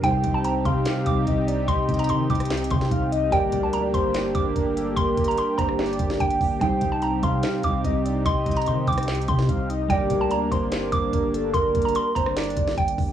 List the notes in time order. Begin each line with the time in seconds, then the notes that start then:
0.02 C2 C3 G3 C4 D#4 G4 C5 G5, kick, closed hi-hat
0.24 C2, kick, closed hi-hat
0.34 A5
0.44 A#5, closed hi-hat
0.65 C3 F5 C6, kick, closed hi-hat
0.85 snare, clap, closed hi-hat
1.06 C2 D6, kick, closed hi-hat
1.27 C2 D#5, kick, closed hi-hat
1.47 D5, closed hi-hat
1.68 C2 D#5 C6, kick, closed hi-hat
1.89 C2, kick, closed hi-hat
1.94 closed hi-hat
1.99 A#5, closed hi-hat
2.04 closed hi-hat
2.09 D#3 C6, closed hi-hat
2.30 C2 G5 D6, kick, closed hi-hat
2.35 closed hi-hat
2.40 cross-stick, closed hi-hat
2.45 closed hi-hat
2.50 snare, clap, closed hi-hat
2.57 closed hi-hat
2.64 closed hi-hat
2.70 C3 C6, kick, closed hi-hat
2.81 snare
2.91 C2 F5, kick, closed hi-hat
3.12 D#5, closed hi-hat
3.31 G1 G3 A#3 D4 G4 A#4 D5 G5, kick, closed hi-hat
3.52 D2, kick, closed hi-hat
3.63 A5
3.73 A#5, closed hi-hat
3.94 G1 C5 C6, kick, closed hi-hat
4.14 snare, clap, closed hi-hat
4.35 G1 D6, kick, closed hi-hat
4.56 G1 A#4, kick, closed hi-hat
4.77 A4, closed hi-hat
4.96 G1 A#4 C6, kick, closed hi-hat
5.17 G1, kick, closed hi-hat
5.24 A#5, closed hi-hat
5.31 closed hi-hat
5.38 C6, closed hi-hat
5.58 G1 C5 A#5, kick, cross-stick, closed hi-hat
5.69 cross-stick
5.79 D5, snare, clap, closed hi-hat
5.86 closed hi-hat
5.93 closed hi-hat
5.99 G1, kick, closed hi-hat
6.10 snare
6.20 G1 G5, kick, closed hi-hat
6.30 closed hi-hat
6.41 G1, kick, open hi-hat
6.59 C2 C3 G3 C4 D#4 C5 G5, kick, closed hi-hat
6.81 C2, kick, closed hi-hat
6.92 A5
7.02 A#5, closed hi-hat
7.23 C3 F5 C6, kick, closed hi-hat
7.43 snare, clap, closed hi-hat
7.64 C2 D6, kick, closed hi-hat
7.84 C2 D#5, kick, closed hi-hat
8.05 D5, closed hi-hat
8.26 C2 D#5 C6, kick, closed hi-hat
8.46 C2, kick, closed hi-hat
8.51 closed hi-hat
8.56 A#5, closed hi-hat
8.62 closed hi-hat
8.66 D#3 C6, closed hi-hat
8.87 C2 G5 D6, kick, closed hi-hat
8.92 closed hi-hat
8.98 cross-stick, closed hi-hat
9.03 closed hi-hat
9.08 snare, clap, closed hi-hat
9.15 closed hi-hat
9.22 closed hi-hat
9.28 C3 C6, kick, closed hi-hat
9.39 snare
9.49 C2 F5, kick, closed hi-hat
9.70 D#5, closed hi-hat
9.88 G1 G3 A#3 D4 G4 A#4 D5 G5, kick, closed hi-hat
10.10 D2, kick, closed hi-hat
10.21 A5
10.31 A#5, closed hi-hat
10.52 G1 C5 C6, kick, closed hi-hat
10.72 snare, clap, closed hi-hat
10.92 G1 D6, kick, closed hi-hat
11.13 G1 A#4, kick, closed hi-hat
11.34 A4, closed hi-hat
11.54 G1 A#4 C6, kick, closed hi-hat
11.75 G1, kick, closed hi-hat
11.82 A#5, closed hi-hat
11.89 closed hi-hat
11.95 C6, closed hi-hat
12.15 G1 C5 A#5, kick, cross-stick, closed hi-hat
12.26 cross-stick
12.36 D5, snare, clap, closed hi-hat
12.43 closed hi-hat
12.50 closed hi-hat
12.57 G1, kick, closed hi-hat
12.68 snare
12.78 G1 G5, kick, closed hi-hat
12.88 closed hi-hat
12.98 G1, kick, open hi-hat